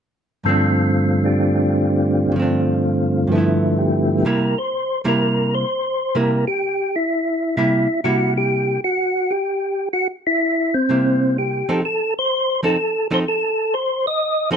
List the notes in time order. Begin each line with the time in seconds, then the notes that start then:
0.44 G2 D3 F3 A3 C4 F4
0.49 D4
1.24 C4 D4 G4
2.28 G2 D3
2.33 F3 A3 C4
2.39 C4 D4 F4
3.27 G2 D3 F3 A3 B3
3.32 F3 B3 E4
3.38 E4
3.79 G4
4.25 C3 G3 A#3 E4 A#4
4.58 C5
5.04 C3 G3 A#3 E4 A#4
5.55 C5
6.15 C3 G3 A#3 E4 A#4
6.47 G4
6.96 E4
7.57 C3 G3 A#3 E4
8.04 C3 G3 A#3 E4 F#4
8.37 G4
8.84 F#4
9.31 G4
9.93 F#4
10.27 E4
10.74 C4
10.89 C3 G3 A#3 E4
11.38 G4
11.69 F3 C4 D#4 A4
11.85 A4
12.19 C5
12.63 F3 C4 D#4 A4
13.11 F3 C4 D#4 A4 C5
13.28 A4
13.74 C5
14.07 D#5
14.51 F3 C4 D#4 A4 C5